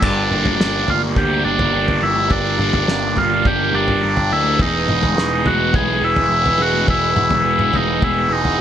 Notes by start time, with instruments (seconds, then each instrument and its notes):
0.02 picked electric bass G1, distorted electric guitar G2, transistor combo organ D4, harmonium G4 A#4 D5 A#5, kick, floor tom, crash
0.31 picked electric bass G1, distorted electric guitar A#3, mid tom
0.45 floor tom, high conga, low conga
0.59 picked electric bass G1, distorted electric guitar G3, snare
0.87 picked electric bass G1, distorted electric guitar A#3, transistor combo organ F4, floor tom, high conga, low conga
1.16 picked electric bass D2, distorted electric guitar D4, transistor combo organ G4, kick, floor tom, high conga
1.44 picked electric bass G1, transistor combo organ D4, distorted electric guitar G4
1.59 floor tom
1.73 picked electric bass G1, distorted electric guitar D4
1.88 floor tom
2.01 picked electric bass G1, distorted electric guitar A#3, transistor combo organ E4, low conga
2.16 high conga
2.31 picked electric bass G1, distorted electric guitar G2, transistor combo organ D4, kick, floor tom
2.59 picked electric bass G1, distorted electric guitar A#3, mid tom
2.73 floor tom, high conga, low conga
2.87 picked electric bass G1, distorted electric guitar G3, snare
3.15 picked electric bass G1, distorted electric guitar A#3, transistor combo organ F4, floor tom, high conga, low conga
3.44 picked electric bass G1, distorted electric guitar D4, transistor combo organ G4, kick, floor tom, high conga
3.74 picked electric bass G1, transistor combo organ D4, distorted electric guitar G4
3.88 floor tom
4.03 picked electric bass G1, distorted electric guitar D4
4.17 floor tom
4.30 picked electric bass D2, distorted electric guitar A#3, transistor combo organ E4, low conga
4.44 high conga
4.58 picked electric bass E1, distorted electric guitar E2, transistor combo organ D#4, harmonium G#4 B4 G#5 B5, kick, floor tom
4.88 picked electric bass E1, distorted electric guitar G#3, mid tom
5.02 floor tom, high conga, low conga
5.17 picked electric bass E1, distorted electric guitar E3, snare
5.45 picked electric bass E1, distorted electric guitar G#3, transistor combo organ F#4, floor tom, high conga
5.73 picked electric bass B1, distorted electric guitar B3, transistor combo organ G#4, kick, floor tom, high conga
6.02 picked electric bass E1, transistor combo organ E4, distorted electric guitar G#4
6.16 floor tom
6.30 picked electric bass E1, distorted electric guitar B3
6.46 floor tom
6.58 picked electric bass E1, distorted electric guitar G#3, transistor combo organ F#4, low conga
6.73 high conga
6.87 picked electric bass E1, distorted electric guitar E2, transistor combo organ E4, kick, floor tom
7.16 picked electric bass E1, distorted electric guitar G#3, mid tom
7.30 floor tom, high conga, low conga
7.44 picked electric bass E1, distorted electric guitar E3
7.59 mid tom
7.73 picked electric bass E1, distorted electric guitar G#3, transistor combo organ D#4, floor tom, high conga, low conga
8.01 picked electric bass E1, distorted electric guitar B3, transistor combo organ E4, kick, floor tom, high conga
8.29 picked electric bass E1, transistor combo organ D#4, distorted electric guitar G#4
8.45 floor tom